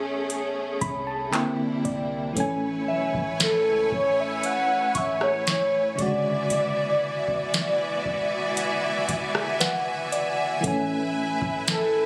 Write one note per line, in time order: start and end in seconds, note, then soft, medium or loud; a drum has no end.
0.00 0.78 A1 loud
0.00 1.29 A3 medium
0.00 1.30 A3 medium
0.00 1.30 B3 medium
0.00 1.30 C#4 medium
0.00 1.31 C#4 medium
0.00 1.30 G#4 medium
0.00 1.31 G#4 medium
0.30 closed hi-hat medium
0.81 1.31 C2 loud
0.81 1.05 B5 medium
0.81 kick medium
0.81 closed hi-hat medium
1.07 1.31 A5 medium
1.31 2.36 C3 medium
1.31 2.36 D3 medium
1.31 2.36 G3 medium
1.31 2.36 A#3 medium
1.31 2.37 C4 medium
1.31 2.36 D4 medium
1.31 2.35 E4 medium
1.31 2.37 E4 medium
1.31 1.81 G5 medium
1.31 clap loud
1.31 closed hi-hat medium
1.85 2.35 C2 loud
1.85 2.33 D5 medium
1.85 kick medium
1.85 closed hi-hat medium
2.33 2.90 A1 loud
2.33 5.93 E3 medium
2.33 5.94 A3 medium
2.33 5.95 A3 medium
2.33 5.95 E4 medium
2.33 5.95 B4 medium
2.33 5.95 C#5 medium
2.33 5.95 G#5 medium
2.33 kick loud
2.33 closed hi-hat medium
2.38 5.95 C#4 medium
2.38 5.96 G#5 medium
2.88 3.13 B1 loud
2.88 4.77 E5 medium
3.14 3.67 A1 loud
3.14 kick loud
3.40 3.89 A4 loud
3.40 snare loud
3.40 closed hi-hat medium
3.66 3.90 C#2 medium
3.92 4.42 A1 loud
3.92 4.21 C#5 loud
3.92 kick loud
4.20 4.47 E5 loud
4.43 4.99 F#5 loud
4.43 closed hi-hat medium
4.95 5.95 A1 loud
4.95 5.22 E5 loud
4.95 6.46 C#6 medium
4.95 kick medium
4.95 closed hi-hat medium
5.21 5.46 C#5 loud
5.21 cross-stick medium
5.47 6.02 C#5 loud
5.47 snare loud
5.47 closed hi-hat medium
5.95 6.48 E1 loud
5.95 10.07 D3 medium
5.95 10.60 E3 medium
5.95 10.08 G#3 medium
5.95 10.60 B3 medium
5.95 10.60 F#4 medium
5.95 10.60 D5 medium
5.95 12.06 E5 medium
5.95 12.06 G#5 medium
5.95 kick loud
5.95 closed hi-hat medium
6.00 10.09 C#3 medium
6.00 10.10 F#4 medium
6.00 9.10 D5 medium
6.50 7.25 E1 loud
6.50 closed hi-hat medium
7.28 8.03 E1 loud
7.28 kick loud
7.54 snare loud
7.54 closed hi-hat medium
8.06 9.05 E1 loud
8.06 kick loud
8.57 closed hi-hat medium
9.09 10.08 E1 loud
9.09 kick medium
9.09 closed hi-hat medium
9.35 cross-stick medium
9.60 11.12 B4 medium
9.60 10.09 F#5 medium
9.60 snare loud
9.60 closed hi-hat medium
10.12 10.61 D5 medium
10.12 closed hi-hat medium
10.61 11.39 A1 loud
10.61 12.06 E3 medium
10.61 12.06 A3 medium
10.61 12.06 E4 medium
10.61 12.06 B4 medium
10.61 kick loud
10.61 closed hi-hat medium
10.65 12.06 C#4 medium
10.65 12.06 G#5 medium
11.42 12.06 A1 loud
11.42 kick loud
11.68 12.06 A4 loud
11.68 snare loud
11.68 closed hi-hat medium